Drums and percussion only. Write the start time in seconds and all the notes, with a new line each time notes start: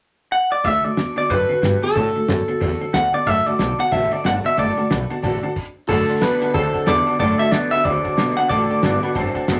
0.64 kick, closed hi-hat
0.97 snare, closed hi-hat
1.17 closed hi-hat
1.30 kick, closed hi-hat
1.63 snare, closed hi-hat
1.83 closed hi-hat
1.96 kick, closed hi-hat
2.29 snare, closed hi-hat
2.48 closed hi-hat
2.61 kick, closed hi-hat
2.94 snare, closed hi-hat
3.14 closed hi-hat
3.26 kick, closed hi-hat
3.59 snare, closed hi-hat
3.79 closed hi-hat
3.92 kick, closed hi-hat
4.25 snare, closed hi-hat
4.45 closed hi-hat
4.58 kick, closed hi-hat
4.91 snare, closed hi-hat
5.11 closed hi-hat
5.23 kick, closed hi-hat
5.56 kick, crash
5.89 kick, crash
6.09 closed hi-hat
6.22 snare, closed hi-hat
6.42 closed hi-hat
6.54 kick, closed hi-hat
6.74 kick, closed hi-hat
6.87 snare, closed hi-hat
7.20 kick, closed hi-hat
7.40 closed hi-hat
7.52 snare, closed hi-hat
7.72 closed hi-hat
7.85 kick, closed hi-hat
8.05 kick, closed hi-hat
8.18 snare, closed hi-hat
8.50 kick, closed hi-hat
8.70 closed hi-hat
8.83 snare, closed hi-hat
9.03 closed hi-hat
9.15 kick, closed hi-hat
9.35 kick, closed hi-hat
9.48 snare, closed hi-hat